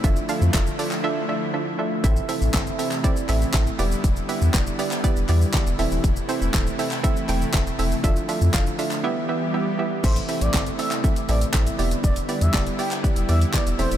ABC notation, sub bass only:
X:1
M:4/4
L:1/16
Q:1/4=120
K:Am
V:1 name="Sub bass" clef=bass
F,,,2 z F,, F,,,2 z8 z2 | A,,,2 z A,,, G,,,2 z4 A,,,2 A,,,2 E,,,2 | E,,,2 z E,, E,,,2 z3 E,,, E,,2 z E,,, E,,, ^D,,, | E,,,2 z E,,, D,,,2 z4 E,,,2 E,,,2 E,,,2 |
F,,,2 z F,, F,,,2 z8 z2 | A,,,2 z A,,, G,,,2 z4 A,,,2 A,,,2 E,,,2 | E,,,2 z E,, E,,,2 z3 E,,, E,,2 z E,,, E,,, ^D,,, |]